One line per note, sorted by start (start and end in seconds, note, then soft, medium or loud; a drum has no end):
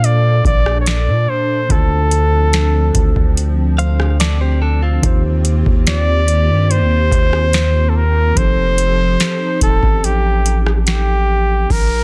0.00 0.41 A#2 loud
0.00 1.65 A#2 medium
0.00 1.66 A#3 medium
0.00 1.67 A#3 medium
0.00 1.66 D4 medium
0.00 4.99 D4 medium
0.00 1.67 A4 medium
0.00 1.67 C5 medium
0.00 closed hi-hat medium
0.05 0.46 D5 loud
0.45 1.09 A#1 loud
0.45 0.78 D5 loud
0.45 kick medium
0.45 closed hi-hat medium
0.66 cross-stick medium
0.81 0.90 C#5 medium
0.86 1.31 D5 loud
0.86 snare loud
0.86 closed hi-hat medium
1.08 1.27 A#2 loud
1.30 1.73 C5 medium
1.69 2.91 D2 loud
1.69 4.99 D3 medium
1.69 5.00 F3 medium
1.69 11.66 C4 medium
1.69 4.99 D4 medium
1.69 5.00 F4 medium
1.69 3.37 A4 loud
1.69 5.00 A4 medium
1.69 5.01 C5 medium
1.69 kick loud
1.69 closed hi-hat medium
2.11 closed hi-hat medium
2.53 snare loud
2.53 closed hi-hat medium
2.95 3.15 D2 loud
2.95 kick medium
2.95 closed hi-hat medium
3.16 5.00 D2 loud
3.16 kick medium
3.37 closed hi-hat medium
3.78 4.18 C5 medium
3.78 4.18 F5 medium
3.78 closed hi-hat medium
4.00 cross-stick medium
4.20 4.40 A4 medium
4.20 4.40 D5 medium
4.20 snare loud
4.20 closed hi-hat medium
4.41 4.61 G4 medium
4.41 4.61 C5 medium
4.62 4.82 D4 medium
4.62 4.81 A4 medium
4.82 5.22 C4 medium
4.82 5.22 F4 medium
5.02 5.63 D#2 loud
5.02 8.32 D#3 medium
5.02 8.33 D#3 medium
5.02 8.33 A#3 medium
5.02 8.33 D#4 medium
5.02 8.33 F4 medium
5.02 8.33 G4 loud
5.02 8.34 G4 medium
5.02 8.34 C5 medium
5.02 kick loud
5.02 closed hi-hat medium
5.45 closed hi-hat medium
5.66 6.51 D#2 loud
5.66 kick medium
5.87 6.73 D5 loud
5.87 snare loud
5.87 closed hi-hat medium
6.28 closed hi-hat medium
6.49 6.82 G2 loud
6.71 7.91 C5 loud
6.71 closed hi-hat medium
6.81 7.10 D#2 loud
7.12 8.33 D#2 loud
7.12 kick loud
7.12 closed hi-hat medium
7.33 cross-stick medium
7.53 snare loud
7.53 closed hi-hat medium
7.89 7.98 A4 medium
7.96 8.39 A#4 loud
8.35 9.17 F1 loud
8.35 11.65 F3 medium
8.35 11.67 F3 medium
8.35 11.66 C4 medium
8.35 11.67 D#4 medium
8.35 11.66 D#4 medium
8.35 11.67 G4 medium
8.35 11.67 A4 loud
8.35 11.67 A4 medium
8.35 9.62 C5 loud
8.35 kick loud
8.35 closed hi-hat medium
8.78 closed hi-hat medium
9.20 snare loud
9.20 closed hi-hat medium
9.61 9.82 D#1 loud
9.61 10.06 A4 loud
9.61 kick medium
9.61 closed hi-hat medium
9.83 11.66 A1 loud
9.83 kick medium
10.04 10.60 G4 loud
10.04 closed hi-hat medium
10.46 closed hi-hat medium
10.66 cross-stick medium
10.87 11.73 G4 loud
10.87 snare loud
10.87 closed hi-hat medium
11.70 12.04 A#1 loud
11.70 12.04 A#4 loud
11.70 kick loud
11.70 downlifter medium